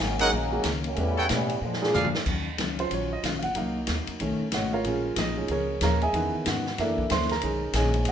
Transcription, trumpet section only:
0, 0, Header, 1, 2, 480
1, 0, Start_track
1, 0, Key_signature, -6, "minor"
1, 0, Tempo, 322581
1, 1457, Time_signature, 4, 2, 24, 8
1, 12081, End_track
2, 0, Start_track
2, 0, Title_t, "Trumpet section"
2, 0, Program_c, 0, 61
2, 295, Note_on_c, 0, 75, 89
2, 298, Note_on_c, 0, 73, 83
2, 298, Note_on_c, 0, 78, 109
2, 300, Note_on_c, 0, 70, 93
2, 425, Note_off_c, 0, 75, 0
2, 427, Note_off_c, 0, 73, 0
2, 427, Note_off_c, 0, 78, 0
2, 428, Note_off_c, 0, 70, 0
2, 1731, Note_on_c, 0, 69, 91
2, 1732, Note_on_c, 0, 71, 79
2, 1732, Note_on_c, 0, 73, 81
2, 1736, Note_on_c, 0, 79, 101
2, 1864, Note_off_c, 0, 69, 0
2, 1864, Note_off_c, 0, 71, 0
2, 1864, Note_off_c, 0, 73, 0
2, 1867, Note_off_c, 0, 79, 0
2, 2886, Note_on_c, 0, 68, 77
2, 2886, Note_on_c, 0, 74, 65
2, 2886, Note_on_c, 0, 77, 89
2, 2887, Note_on_c, 0, 70, 65
2, 3091, Note_off_c, 0, 77, 0
2, 3092, Note_off_c, 0, 68, 0
2, 3092, Note_off_c, 0, 70, 0
2, 3092, Note_off_c, 0, 74, 0
2, 12081, End_track
0, 0, End_of_file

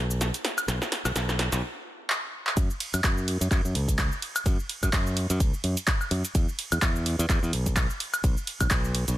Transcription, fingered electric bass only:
0, 0, Header, 1, 3, 480
1, 0, Start_track
1, 0, Tempo, 472441
1, 690, Time_signature, 4, 2, 24, 8
1, 9323, End_track
2, 0, Start_track
2, 0, Title_t, "Fingered electric bass"
2, 0, Program_c, 0, 33
2, 0, Note_on_c, 0, 35, 90
2, 302, Note_off_c, 0, 35, 0
2, 691, Note_on_c, 0, 35, 102
2, 798, Note_off_c, 0, 35, 0
2, 1067, Note_on_c, 0, 35, 99
2, 1149, Note_off_c, 0, 35, 0
2, 1172, Note_on_c, 0, 35, 87
2, 1502, Note_off_c, 0, 35, 0
2, 1548, Note_on_c, 0, 35, 97
2, 1629, Note_off_c, 0, 35, 0
2, 2610, Note_on_c, 0, 42, 100
2, 2717, Note_off_c, 0, 42, 0
2, 2985, Note_on_c, 0, 42, 92
2, 3068, Note_off_c, 0, 42, 0
2, 3088, Note_on_c, 0, 42, 89
2, 3420, Note_off_c, 0, 42, 0
2, 3463, Note_on_c, 0, 42, 97
2, 3547, Note_off_c, 0, 42, 0
2, 3569, Note_on_c, 0, 42, 101
2, 3677, Note_off_c, 0, 42, 0
2, 3707, Note_on_c, 0, 42, 100
2, 3789, Note_off_c, 0, 42, 0
2, 3812, Note_on_c, 0, 37, 92
2, 4142, Note_off_c, 0, 37, 0
2, 4528, Note_on_c, 0, 42, 107
2, 4637, Note_off_c, 0, 42, 0
2, 4904, Note_on_c, 0, 42, 97
2, 4988, Note_off_c, 0, 42, 0
2, 5009, Note_on_c, 0, 42, 91
2, 5340, Note_off_c, 0, 42, 0
2, 5385, Note_on_c, 0, 42, 96
2, 5468, Note_off_c, 0, 42, 0
2, 5488, Note_on_c, 0, 37, 85
2, 5597, Note_off_c, 0, 37, 0
2, 5728, Note_on_c, 0, 42, 90
2, 5837, Note_off_c, 0, 42, 0
2, 6208, Note_on_c, 0, 42, 100
2, 6317, Note_off_c, 0, 42, 0
2, 6451, Note_on_c, 0, 40, 103
2, 6558, Note_off_c, 0, 40, 0
2, 6828, Note_on_c, 0, 40, 95
2, 6910, Note_off_c, 0, 40, 0
2, 6929, Note_on_c, 0, 40, 88
2, 7260, Note_off_c, 0, 40, 0
2, 7306, Note_on_c, 0, 40, 100
2, 7388, Note_off_c, 0, 40, 0
2, 7546, Note_on_c, 0, 40, 107
2, 7629, Note_off_c, 0, 40, 0
2, 7651, Note_on_c, 0, 35, 93
2, 7981, Note_off_c, 0, 35, 0
2, 8369, Note_on_c, 0, 35, 104
2, 8477, Note_off_c, 0, 35, 0
2, 8745, Note_on_c, 0, 35, 96
2, 8828, Note_off_c, 0, 35, 0
2, 8848, Note_on_c, 0, 35, 87
2, 9180, Note_off_c, 0, 35, 0
2, 9225, Note_on_c, 0, 35, 101
2, 9308, Note_off_c, 0, 35, 0
2, 9323, End_track
3, 0, Start_track
3, 0, Title_t, "Muted fingered electric bass strokes"
3, 5622, Note_on_c, 9, 29, 45
3, 5724, Note_off_c, 9, 29, 0
3, 9323, End_track
0, 0, End_of_file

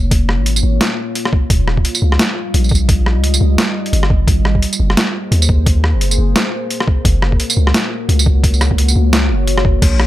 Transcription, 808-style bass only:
0, 0, Header, 1, 2, 480
1, 0, Start_track
1, 0, Tempo, 346821
1, 155, Time_signature, 4, 2, 24, 8
1, 13934, End_track
2, 0, Start_track
2, 0, Title_t, "808-style bass"
2, 0, Program_c, 0, 38
2, 0, Note_on_c, 0, 29, 96
2, 530, Note_on_c, 0, 32, 90
2, 551, Note_off_c, 0, 29, 0
2, 860, Note_off_c, 0, 32, 0
2, 875, Note_on_c, 0, 32, 79
2, 1099, Note_off_c, 0, 32, 0
2, 2076, Note_on_c, 0, 27, 101
2, 2543, Note_off_c, 0, 27, 0
2, 2796, Note_on_c, 0, 37, 83
2, 3020, Note_off_c, 0, 37, 0
2, 3518, Note_on_c, 0, 34, 97
2, 4375, Note_on_c, 0, 37, 90
2, 4395, Note_off_c, 0, 34, 0
2, 4702, Note_off_c, 0, 37, 0
2, 4717, Note_on_c, 0, 37, 84
2, 4940, Note_off_c, 0, 37, 0
2, 5437, Note_on_c, 0, 31, 100
2, 5903, Note_off_c, 0, 31, 0
2, 5916, Note_on_c, 0, 32, 96
2, 6383, Note_off_c, 0, 32, 0
2, 6639, Note_on_c, 0, 30, 84
2, 6861, Note_off_c, 0, 30, 0
2, 7357, Note_on_c, 0, 39, 96
2, 8217, Note_on_c, 0, 30, 90
2, 8238, Note_off_c, 0, 39, 0
2, 8544, Note_off_c, 0, 30, 0
2, 8556, Note_on_c, 0, 30, 81
2, 8780, Note_off_c, 0, 30, 0
2, 9756, Note_on_c, 0, 30, 97
2, 10223, Note_off_c, 0, 30, 0
2, 10475, Note_on_c, 0, 37, 83
2, 10699, Note_off_c, 0, 37, 0
2, 11194, Note_on_c, 0, 37, 96
2, 12036, Note_off_c, 0, 37, 0
2, 12055, Note_on_c, 0, 37, 90
2, 12383, Note_off_c, 0, 37, 0
2, 12397, Note_on_c, 0, 37, 83
2, 12871, Note_on_c, 0, 30, 81
2, 12891, Note_off_c, 0, 37, 0
2, 13580, Note_off_c, 0, 30, 0
2, 13592, Note_on_c, 0, 34, 99
2, 13934, Note_off_c, 0, 34, 0
2, 13934, End_track
0, 0, End_of_file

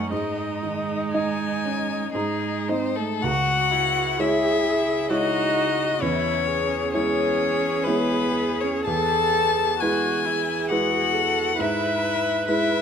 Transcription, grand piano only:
0, 0, Header, 1, 2, 480
1, 0, Start_track
1, 0, Key_signature, 4, "minor"
1, 0, Tempo, 1013514
1, 52, Time_signature, 3, 2, 24, 8
1, 1012, Tempo, 1086957
1, 1492, Tempo, 961538
1, 1972, Tempo, 917431
1, 3892, Tempo, 998336
1, 4372, Tempo, 943396
1, 4852, Tempo, 890208
1, 6481, End_track
2, 0, Start_track
2, 0, Title_t, "Grand piano"
2, 0, Program_c, 0, 0
2, 0, Control_c, 0, 64, 127
2, 0, Note_on_c, 0, 42, 62
2, 0, Note_on_c, 0, 63, 45
2, 0, Note_on_c, 0, 75, 47
2, 56, Note_on_c, 0, 44, 55
2, 63, Note_off_c, 0, 75, 0
2, 63, Control_c, 0, 64, 0
2, 64, Note_off_c, 0, 42, 0
2, 67, Note_off_c, 0, 63, 0
2, 153, Control_c, 0, 64, 127
2, 299, Note_on_c, 0, 51, 41
2, 542, Note_on_c, 0, 63, 43
2, 542, Note_on_c, 0, 75, 49
2, 680, Note_off_c, 0, 51, 0
2, 758, Note_off_c, 0, 63, 0
2, 758, Note_off_c, 0, 75, 0
2, 782, Note_on_c, 0, 61, 41
2, 996, Note_off_c, 0, 44, 0
2, 1016, Note_off_c, 0, 61, 0
2, 1016, Note_on_c, 0, 44, 58
2, 1022, Control_c, 0, 64, 0
2, 1110, Control_c, 0, 64, 127
2, 1257, Note_on_c, 0, 63, 41
2, 1259, Note_on_c, 0, 75, 47
2, 1477, Note_off_c, 0, 63, 0
2, 1478, Note_off_c, 0, 75, 0
2, 1480, Note_off_c, 0, 44, 0
2, 1497, Note_on_c, 0, 37, 65
2, 1501, Control_c, 0, 64, 0
2, 1594, Control_c, 0, 64, 127
2, 1961, Note_off_c, 0, 37, 0
2, 1977, Note_on_c, 0, 56, 51
2, 1977, Note_on_c, 0, 64, 53
2, 1980, Note_on_c, 0, 73, 58
2, 2430, Note_off_c, 0, 56, 0
2, 2430, Note_off_c, 0, 64, 0
2, 2432, Note_off_c, 0, 73, 0
2, 2451, Note_on_c, 0, 56, 49
2, 2454, Note_on_c, 0, 64, 52
2, 2455, Note_on_c, 0, 73, 58
2, 2907, Note_off_c, 0, 56, 0
2, 2908, Note_off_c, 0, 64, 0
2, 2909, Note_off_c, 0, 73, 0
2, 2932, Note_on_c, 0, 40, 57
2, 2937, Control_c, 0, 64, 0
2, 3008, Control_c, 0, 64, 127
2, 3397, Note_off_c, 0, 40, 0
2, 3413, Note_on_c, 0, 56, 47
2, 3415, Note_on_c, 0, 64, 48
2, 3418, Note_on_c, 0, 73, 51
2, 3873, Note_off_c, 0, 56, 0
2, 3874, Note_off_c, 0, 64, 0
2, 3875, Note_off_c, 0, 73, 0
2, 3895, Note_on_c, 0, 56, 50
2, 3898, Note_on_c, 0, 64, 48
2, 3900, Note_on_c, 0, 73, 51
2, 4354, Note_off_c, 0, 56, 0
2, 4355, Note_off_c, 0, 64, 0
2, 4356, Note_off_c, 0, 73, 0
2, 4381, Control_c, 0, 64, 0
2, 4381, Note_on_c, 0, 40, 60
2, 4454, Control_c, 0, 64, 127
2, 4842, Note_off_c, 0, 40, 0
2, 4863, Note_on_c, 0, 56, 47
2, 4865, Note_on_c, 0, 71, 54
2, 4866, Note_on_c, 0, 64, 49
2, 5319, Note_off_c, 0, 56, 0
2, 5320, Note_off_c, 0, 71, 0
2, 5321, Note_off_c, 0, 64, 0
2, 5346, Note_on_c, 0, 56, 48
2, 5347, Note_on_c, 0, 64, 49
2, 5350, Note_on_c, 0, 71, 53
2, 5797, Note_off_c, 0, 56, 0
2, 5797, Note_off_c, 0, 64, 0
2, 5799, Note_off_c, 0, 71, 0
2, 5818, Note_on_c, 0, 44, 63
2, 5823, Control_c, 0, 64, 0
2, 5920, Control_c, 0, 64, 127
2, 6282, Note_off_c, 0, 44, 0
2, 6299, Note_on_c, 0, 56, 49
2, 6303, Note_on_c, 0, 64, 49
2, 6305, Note_on_c, 0, 71, 53
2, 6481, Note_off_c, 0, 56, 0
2, 6481, Note_off_c, 0, 64, 0
2, 6481, Note_off_c, 0, 71, 0
2, 6481, End_track
0, 0, End_of_file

